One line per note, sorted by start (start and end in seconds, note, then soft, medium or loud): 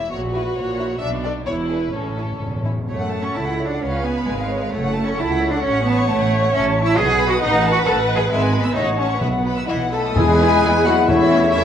0.00 0.12 E4 soft
0.00 0.11 E5 medium
0.11 0.49 A#1 medium
0.11 0.49 A#2 medium
0.11 0.99 F#4 medium
0.11 0.19 C#5 medium
0.33 0.42 E4 soft
0.33 0.42 F#4 soft
0.33 0.55 B4 medium
0.55 0.93 A#1 medium
0.55 0.93 A#2 medium
0.55 1.00 C#5 medium
0.78 0.86 E4 soft
0.78 0.86 F#4 soft
1.00 1.39 B1 medium
1.00 1.38 B2 medium
1.00 1.45 D4 medium
1.00 1.08 E5 medium
1.24 1.31 D4 soft
1.24 1.32 A4 soft
1.24 1.32 D5 medium
1.45 1.85 E1 medium
1.45 1.85 E2 medium
1.45 1.92 E4 medium
1.45 1.54 C#5 medium
1.69 1.77 D4 soft
1.69 1.77 G#4 soft
1.69 1.93 B4 medium
1.92 2.32 A1 medium
1.92 2.32 A2 medium
1.92 2.00 A2 soft
1.92 2.64 C#4 soft
1.92 2.65 A4 medium
2.01 2.08 A2 soft
2.09 2.15 A2 soft
2.17 2.23 A2 soft
2.17 2.25 C#4 soft
2.17 2.25 E4 soft
2.25 2.31 A2 soft
2.32 2.39 A2 soft
2.40 2.81 E1 soft
2.40 2.81 E2 soft
2.40 2.46 A2 soft
2.48 2.55 A2 soft
2.56 2.62 A2 soft
2.63 2.70 A2 medium
2.63 2.73 C#4 soft
2.63 2.72 E4 soft
2.71 2.78 A2 medium
2.79 2.86 A2 medium
2.88 3.28 F#2 medium
2.88 3.18 A3 medium
2.88 3.78 A4 medium
2.88 3.00 C#5 medium
2.88 3.78 F#5 soft
3.00 3.12 F#5 soft
3.11 3.23 A5 soft
3.21 3.36 C#4 medium
3.21 3.35 C#6 soft
3.35 3.74 C#2 medium
3.35 3.67 E4 medium
3.35 3.47 A5 soft
3.46 3.58 F#5 soft
3.59 3.71 C#5 soft
3.68 3.82 D4 medium
3.68 3.82 F#5 soft
3.81 4.19 C#2 medium
3.81 4.05 C#4 medium
3.81 4.73 B4 medium
3.81 3.93 C#5 medium
3.81 4.73 F5 medium
3.93 4.04 F5 medium
4.05 4.27 B3 medium
4.05 4.16 G#5 medium
4.17 4.28 B5 soft
4.27 4.65 G#1 medium
4.27 4.73 G#3 medium
4.27 4.39 G#5 soft
4.39 4.50 F5 medium
4.49 4.61 C#5 soft
4.61 4.73 F5 medium
4.72 5.11 F#1 medium
4.72 5.04 A3 medium
4.72 5.62 A4 medium
4.72 4.83 C#5 medium
4.72 6.55 F#5 medium
4.84 4.96 F#5 medium
4.94 5.06 A5 medium
5.04 5.19 C#4 medium
5.04 5.18 C#6 medium
5.18 5.56 C#2 medium
5.18 5.49 E4 loud
5.18 5.30 A5 medium
5.30 5.41 F#5 medium
5.41 5.53 C#5 medium
5.51 5.65 D4 medium
5.51 5.64 F#5 medium
5.64 6.01 A1 medium
5.64 5.86 C#4 loud
5.64 5.75 C#5 medium
5.64 6.99 C#5 medium
5.75 5.86 F#5 medium
5.86 6.09 B3 loud
5.86 5.98 A5 medium
5.97 6.09 C#6 medium
6.09 6.47 A1 medium
6.09 6.53 A3 loud
6.09 6.20 A5 medium
6.20 6.31 F#5 medium
6.31 6.42 C#5 medium
6.42 6.53 F#5 medium
6.53 6.91 A1 loud
6.53 6.83 C#4 loud
6.53 6.64 E5 medium
6.53 6.99 A5 medium
6.63 6.75 A5 medium
6.74 6.86 C#6 medium
6.84 6.98 E4 loud
6.84 6.98 E6 medium
6.97 7.35 B1 medium
6.97 7.28 G#4 loud
6.97 8.77 B4 medium
6.97 7.08 D#5 medium
6.97 8.31 F#5 medium
7.08 7.20 F#5 medium
7.20 7.32 B5 medium
7.29 7.43 F#4 loud
7.29 7.43 D#6 medium
7.42 7.79 A1 loud
7.42 7.71 D#4 loud
7.42 7.53 D#5 medium
7.52 7.64 F#5 medium
7.64 7.75 A5 medium
7.72 7.78 F#4 loud
7.72 7.87 B5 medium
7.86 8.23 A1 medium
7.86 7.95 A4 loud
7.86 7.97 A5 medium
7.97 8.09 F#5 medium
8.07 8.19 D#5 medium
8.16 8.22 G#4 loud
8.16 8.31 F#5 medium
8.30 8.68 G#1 medium
8.30 8.60 G#3 medium
8.30 8.41 E5 medium
8.30 8.75 G#5 medium
8.41 8.53 G#5 medium
8.53 8.65 B5 medium
8.60 8.76 B3 medium
8.60 8.76 E6 medium
8.74 9.14 A1 medium
8.74 8.98 D#4 loud
8.74 9.22 C#5 medium
8.74 8.86 E5 medium
8.74 9.64 F#5 medium
8.86 8.99 F#5 medium
8.97 9.22 C#4 medium
8.97 9.10 A5 medium
9.09 9.22 C#6 medium
9.21 9.61 B1 medium
9.21 9.66 B2 medium
9.21 9.68 B3 medium
9.21 9.96 B4 medium
9.21 9.33 E5 medium
9.33 9.46 F#5 medium
9.46 9.58 B5 soft
9.56 9.69 E6 soft
9.68 10.09 B1 medium
9.68 9.91 E3 medium
9.68 9.76 E4 medium
9.68 9.94 E4 medium
9.68 9.80 D#5 soft
9.68 9.77 E5 medium
9.68 9.92 F#5 medium
9.81 9.93 F#5 soft
9.92 10.16 A3 medium
9.92 10.18 A4 medium
9.92 10.17 A4 medium
9.92 10.17 D#5 medium
9.92 10.01 A5 medium
9.92 10.05 B5 soft
10.05 10.17 D#6 soft
10.16 10.82 E2 loud
10.16 10.58 E2 medium
10.16 11.05 G#3 medium
10.16 10.86 G#3 medium
10.16 11.10 G#3 medium
10.16 10.25 B3 medium
10.16 11.64 E4 medium
10.16 10.25 E4 medium
10.16 10.86 G#4 medium
10.16 11.05 B4 medium
10.16 10.84 G#5 loud
10.16 11.10 B5 medium
10.41 10.49 B3 medium
10.41 10.49 E4 medium
10.63 11.03 E2 medium
10.63 10.72 B3 medium
10.63 10.72 E4 medium
10.86 11.09 F#3 medium
10.86 10.95 B3 medium
10.86 10.95 E4 medium
10.86 10.94 F#4 medium
10.86 10.97 F#4 medium
10.86 11.09 F#5 medium
11.08 11.64 E2 loud
11.08 11.49 E2 medium
11.08 11.53 E3 medium
11.08 11.64 A3 medium
11.08 11.17 A3 medium
11.08 11.18 C#4 medium
11.08 11.53 E4 medium
11.08 11.52 E4 medium
11.08 11.64 C#5 medium
11.08 11.52 E5 loud
11.08 11.64 C#6 medium
11.33 11.41 A3 medium
11.33 11.41 C#4 medium
11.53 11.64 E2 medium
11.53 11.64 E3 medium
11.53 11.63 A3 medium
11.53 11.63 C#4 medium
11.53 11.64 E4 medium
11.53 11.64 E5 loud